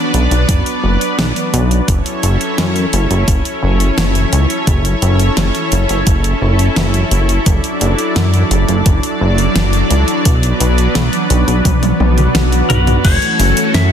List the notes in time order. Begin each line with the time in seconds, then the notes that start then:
Already playing: F#3 B3 D4 B4 D5
0.14 B1, closed hi-hat
0.31 B1, closed hi-hat
0.49 F#1, kick, closed hi-hat
0.66 closed hi-hat
0.83 F#1
1.01 closed hi-hat
1.18 B1, snare, closed hi-hat
1.36 closed hi-hat
1.53 B1, closed hi-hat
1.71 closed hi-hat
1.88 F#1 C#4 E4 A4 C#5, kick, closed hi-hat
2.06 closed hi-hat
2.23 F#1, closed hi-hat
2.41 closed hi-hat
2.58 F#2, snare, closed hi-hat
2.76 closed hi-hat
2.93 F#1, closed hi-hat
3.10 F#1, closed hi-hat
3.28 F#1, kick, closed hi-hat
3.45 closed hi-hat
3.63 F#1
3.80 closed hi-hat
3.97 F#1, snare, closed hi-hat
4.15 closed hi-hat
4.32 C#2, closed hi-hat
4.50 closed hi-hat
4.67 F#1, kick, closed hi-hat
4.85 closed hi-hat
5.02 F#1, closed hi-hat
5.20 closed hi-hat
5.37 F#1, snare, closed hi-hat
5.55 closed hi-hat
5.72 F#1, closed hi-hat
5.89 F#1, closed hi-hat
6.07 F#1, kick, closed hi-hat
6.24 closed hi-hat
6.42 F#1
6.59 closed hi-hat
6.76 F#1, snare, closed hi-hat
6.94 closed hi-hat
7.11 F#1, closed hi-hat
7.29 closed hi-hat
7.46 F#1 F#3 D4 D5, kick, closed hi-hat
7.64 closed hi-hat
7.81 F#1, closed hi-hat
7.99 closed hi-hat
8.16 F#2, snare, closed hi-hat
8.34 closed hi-hat
8.51 F#1, closed hi-hat
8.68 F#1, closed hi-hat
8.86 F#1, kick, closed hi-hat
9.03 closed hi-hat
9.21 F#1
9.38 closed hi-hat
9.56 F#1, snare, closed hi-hat
9.73 closed hi-hat
9.90 C#2, closed hi-hat
10.08 closed hi-hat
10.25 B1 B3 B4, kick, closed hi-hat
10.43 closed hi-hat
10.60 B1, closed hi-hat
10.78 closed hi-hat
10.95 B1, snare, closed hi-hat
11.13 closed hi-hat
11.30 B1, closed hi-hat
11.48 B1, closed hi-hat
11.65 B1, kick, closed hi-hat, high tom, swell
11.83 closed hi-hat, high tom
12.00 B1, high tom
12.18 closed hi-hat, mid tom
12.35 B1, snare, closed hi-hat, mid tom
12.52 closed hi-hat
12.70 B1 B4, closed hi-hat, mid tom
12.87 closed hi-hat, mid tom
13.05 F#1 E3 A3 C#4 F#4 A4 C#5, kick, closed hi-hat, crash, cabasa
13.22 closed hi-hat
13.39 F#1, open hi-hat, cabasa
13.57 closed hi-hat, cabasa
13.74 F#2 E5, snare, closed hi-hat, cabasa